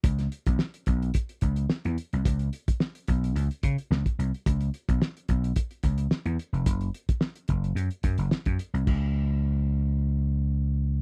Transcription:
<<
  \new Staff \with { instrumentName = "Slap bass" } { \clef bass \time 4/4 \key cis \minor \tempo 4 = 109 cis,8 r16 b,,16 r8 b,,8 r8 cis,8 r16 e,16 r16 bis,,16 | cis,8 r4 b,,8 cis,16 r16 cis16 r16 cis,16 r16 bis,,16 r16 | cis,8 r16 b,,16 r8 b,,8 r8 cis,8 r16 e,16 r16 eis,,16 | fis,,8 r4 fis,,8 fis,16 r16 fis,16 fis,,16 r16 fis,16 r16 bis,,16 |
cis,1 | }
  \new DrumStaff \with { instrumentName = "Drums" } \drummode { \time 4/4 <hh bd>16 <hh sn>16 hh16 <hh bd>16 sn16 hh16 <hh bd>16 hh16 <hh bd>16 hh16 <hh bd>16 hh16 sn16 hh16 hh16 hh16 | <hh bd>16 hh16 hh16 <hh bd>16 sn16 hh16 <hh bd>16 hh16 hh16 hh16 <hh bd>16 hh16 sn16 <hh bd>16 hh16 hh16 | <hh bd>16 hh16 hh16 <hh bd>16 sn16 hh16 <hh bd>16 hh16 <hh bd>16 hh16 <hh bd>16 hh16 sn16 hh16 hh16 hh16 | <hh bd>16 hh16 hh16 <hh bd>16 sn16 hh16 <hh bd>16 hh16 hh16 hh16 <hh bd>16 hh16 sn16 <hh bd>16 hh16 hh16 |
<cymc bd>4 r4 r4 r4 | }
>>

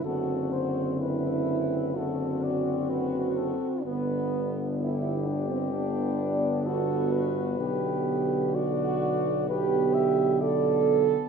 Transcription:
<<
  \new Staff \with { instrumentName = "Flugelhorn" } { \time 4/4 \key g \major \tempo 4 = 64 a'8 c''8 b'4 a'8 d''8 b'8 a'8 | b'8 r8 g'2 a'8 b'8~ | b'4 d''4 b'8 e''8 d''8 r8 | }
  \new Staff \with { instrumentName = "French horn section" } { \time 4/4 \key g \major fis'4 e'4 fis'2 | b4 e'8 d'16 c'16 d'4 fis'4 | g'4 fis'4 g'4 a'4 | }
  \new Staff \with { instrumentName = "Trombone section" } { \time 4/4 \key g \major c'2 c'2 | b2 b2 | b2 b2 | }
  \new Staff \with { instrumentName = "Trombone" } { \clef bass \time 4/4 \key g \major d2 d4. r8 | d2 d2 | d2 d2 | }
  \new Staff \with { instrumentName = "Tuba" } { \clef bass \time 4/4 \key g \major fis,,2.~ fis,,8 r8 | g,,1 | b,,1 | }
>>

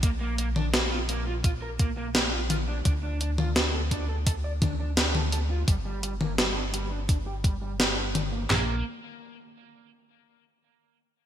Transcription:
<<
  \new Staff \with { instrumentName = "Overdriven electric guitar" } { \time 4/4 \key bes \major \tempo 4 = 85 bes16 bes16 bes16 d'16 bes16 f'16 bes16 f'16 f'16 bes'16 bes16 bes16 bes16 f'16 f'16 d'16 | d'16 d'16 d'16 f'16 d'16 a'16 d'16 a'16 a'16 d''16 d'16 d'16 d'16 a'16 a'16 f'16 | g16 g16 g16 bes16 g16 d'16 g16 d'16 d'16 g'16 g16 g16 g16 d'16 d'16 bes16 | bes8 r2. r8 | }
  \new Staff \with { instrumentName = "Analog synth bass" } { \clef bass \time 4/4 \key bes \major bes,,1 | d,1 | g,,1 | bes,,8 r2. r8 | }
  \new DrumStaff \with { instrumentName = "Drums" } \drummode { \time 4/4 <hh bd>8 hh16 toml16 <hh sn>8 hh8 <hh bd>8 <hh bd>8 <hh sn>8 <hh toml>8 | <hh bd>8 hh16 toml16 <hh sn>8 <hh bd>8 <hh bd>8 <hh bd toml>8 <hh sn>16 toml16 hh8 | <hh bd>8 hh16 toml16 <hh sn>8 hh8 <hh bd>8 <hh bd>8 <hh sn>8 <hh toml>8 | <hc sn tomfh>4 r4 r4 r4 | }
>>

